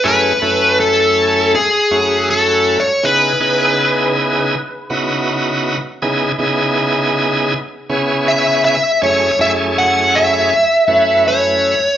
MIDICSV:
0, 0, Header, 1, 3, 480
1, 0, Start_track
1, 0, Key_signature, 4, "minor"
1, 0, Tempo, 749064
1, 21, Time_signature, 4, 2, 24, 8
1, 7672, End_track
2, 0, Start_track
2, 0, Title_t, "Lead electric guitar"
2, 0, Program_c, 0, 29
2, 30, Note_on_c, 0, 71, 89
2, 511, Note_off_c, 0, 71, 0
2, 514, Note_on_c, 0, 69, 83
2, 990, Note_off_c, 0, 69, 0
2, 992, Note_on_c, 0, 68, 83
2, 1473, Note_off_c, 0, 68, 0
2, 1476, Note_on_c, 0, 69, 74
2, 1794, Note_on_c, 0, 73, 78
2, 1799, Note_off_c, 0, 69, 0
2, 1953, Note_off_c, 0, 73, 0
2, 1954, Note_on_c, 0, 71, 78
2, 3363, Note_off_c, 0, 71, 0
2, 5306, Note_on_c, 0, 76, 78
2, 5535, Note_off_c, 0, 76, 0
2, 5543, Note_on_c, 0, 76, 81
2, 5765, Note_off_c, 0, 76, 0
2, 5789, Note_on_c, 0, 73, 81
2, 6008, Note_off_c, 0, 73, 0
2, 6030, Note_on_c, 0, 76, 82
2, 6094, Note_off_c, 0, 76, 0
2, 6269, Note_on_c, 0, 78, 89
2, 6507, Note_on_c, 0, 76, 90
2, 6511, Note_off_c, 0, 78, 0
2, 7224, Note_off_c, 0, 76, 0
2, 7226, Note_on_c, 0, 73, 81
2, 7672, Note_off_c, 0, 73, 0
2, 7672, End_track
3, 0, Start_track
3, 0, Title_t, "Tonewheel organ"
3, 0, Program_c, 1, 16
3, 24, Note_on_c, 1, 57, 64
3, 25, Note_on_c, 1, 42, 70
3, 26, Note_on_c, 1, 61, 62
3, 26, Note_on_c, 1, 64, 63
3, 28, Note_on_c, 1, 68, 76
3, 212, Note_off_c, 1, 57, 0
3, 213, Note_off_c, 1, 42, 0
3, 213, Note_off_c, 1, 61, 0
3, 213, Note_off_c, 1, 64, 0
3, 214, Note_off_c, 1, 68, 0
3, 267, Note_on_c, 1, 57, 66
3, 268, Note_on_c, 1, 42, 75
3, 268, Note_on_c, 1, 61, 69
3, 268, Note_on_c, 1, 64, 70
3, 270, Note_on_c, 1, 69, 81
3, 1000, Note_off_c, 1, 42, 0
3, 1000, Note_off_c, 1, 57, 0
3, 1000, Note_off_c, 1, 61, 0
3, 1000, Note_off_c, 1, 64, 0
3, 1001, Note_off_c, 1, 69, 0
3, 1223, Note_on_c, 1, 42, 64
3, 1225, Note_on_c, 1, 57, 55
3, 1225, Note_on_c, 1, 66, 66
3, 1226, Note_on_c, 1, 61, 54
3, 1227, Note_on_c, 1, 64, 60
3, 1781, Note_off_c, 1, 42, 0
3, 1781, Note_off_c, 1, 66, 0
3, 1782, Note_off_c, 1, 57, 0
3, 1782, Note_off_c, 1, 61, 0
3, 1783, Note_off_c, 1, 64, 0
3, 1944, Note_on_c, 1, 49, 69
3, 1944, Note_on_c, 1, 59, 67
3, 1944, Note_on_c, 1, 63, 66
3, 1944, Note_on_c, 1, 68, 73
3, 1946, Note_on_c, 1, 64, 68
3, 2133, Note_off_c, 1, 49, 0
3, 2133, Note_off_c, 1, 59, 0
3, 2133, Note_off_c, 1, 63, 0
3, 2133, Note_off_c, 1, 68, 0
3, 2134, Note_off_c, 1, 64, 0
3, 2180, Note_on_c, 1, 49, 75
3, 2180, Note_on_c, 1, 59, 69
3, 2182, Note_on_c, 1, 63, 69
3, 2184, Note_on_c, 1, 68, 84
3, 2185, Note_on_c, 1, 64, 68
3, 2916, Note_off_c, 1, 49, 0
3, 2916, Note_off_c, 1, 59, 0
3, 2917, Note_off_c, 1, 63, 0
3, 2918, Note_off_c, 1, 68, 0
3, 2919, Note_off_c, 1, 64, 0
3, 3139, Note_on_c, 1, 59, 71
3, 3141, Note_on_c, 1, 49, 78
3, 3141, Note_on_c, 1, 66, 75
3, 3143, Note_on_c, 1, 63, 62
3, 3144, Note_on_c, 1, 64, 64
3, 3698, Note_off_c, 1, 59, 0
3, 3699, Note_off_c, 1, 49, 0
3, 3699, Note_off_c, 1, 66, 0
3, 3700, Note_off_c, 1, 63, 0
3, 3701, Note_off_c, 1, 64, 0
3, 3858, Note_on_c, 1, 49, 87
3, 3858, Note_on_c, 1, 63, 74
3, 3859, Note_on_c, 1, 64, 73
3, 3860, Note_on_c, 1, 59, 74
3, 3860, Note_on_c, 1, 68, 88
3, 4049, Note_off_c, 1, 49, 0
3, 4050, Note_off_c, 1, 59, 0
3, 4050, Note_off_c, 1, 63, 0
3, 4050, Note_off_c, 1, 64, 0
3, 4050, Note_off_c, 1, 68, 0
3, 4092, Note_on_c, 1, 63, 78
3, 4093, Note_on_c, 1, 49, 80
3, 4093, Note_on_c, 1, 59, 80
3, 4095, Note_on_c, 1, 64, 79
3, 4097, Note_on_c, 1, 68, 95
3, 4831, Note_off_c, 1, 63, 0
3, 4832, Note_off_c, 1, 49, 0
3, 4832, Note_off_c, 1, 59, 0
3, 4833, Note_off_c, 1, 64, 0
3, 4834, Note_off_c, 1, 68, 0
3, 5059, Note_on_c, 1, 49, 67
3, 5059, Note_on_c, 1, 61, 68
3, 5059, Note_on_c, 1, 64, 68
3, 5060, Note_on_c, 1, 59, 64
3, 5062, Note_on_c, 1, 68, 77
3, 5617, Note_off_c, 1, 49, 0
3, 5617, Note_off_c, 1, 59, 0
3, 5617, Note_off_c, 1, 61, 0
3, 5617, Note_off_c, 1, 64, 0
3, 5619, Note_off_c, 1, 68, 0
3, 5777, Note_on_c, 1, 61, 61
3, 5779, Note_on_c, 1, 42, 64
3, 5779, Note_on_c, 1, 64, 60
3, 5779, Note_on_c, 1, 68, 78
3, 5780, Note_on_c, 1, 57, 63
3, 5968, Note_off_c, 1, 61, 0
3, 5969, Note_off_c, 1, 42, 0
3, 5969, Note_off_c, 1, 57, 0
3, 5969, Note_off_c, 1, 64, 0
3, 5969, Note_off_c, 1, 68, 0
3, 6016, Note_on_c, 1, 64, 66
3, 6017, Note_on_c, 1, 42, 69
3, 6017, Note_on_c, 1, 57, 69
3, 6019, Note_on_c, 1, 61, 69
3, 6019, Note_on_c, 1, 68, 85
3, 6752, Note_off_c, 1, 42, 0
3, 6752, Note_off_c, 1, 57, 0
3, 6752, Note_off_c, 1, 64, 0
3, 6753, Note_off_c, 1, 61, 0
3, 6753, Note_off_c, 1, 68, 0
3, 6968, Note_on_c, 1, 42, 57
3, 6970, Note_on_c, 1, 57, 56
3, 6971, Note_on_c, 1, 61, 57
3, 6972, Note_on_c, 1, 64, 56
3, 6974, Note_on_c, 1, 71, 63
3, 7530, Note_off_c, 1, 42, 0
3, 7531, Note_off_c, 1, 57, 0
3, 7532, Note_off_c, 1, 61, 0
3, 7532, Note_off_c, 1, 64, 0
3, 7533, Note_off_c, 1, 71, 0
3, 7672, End_track
0, 0, End_of_file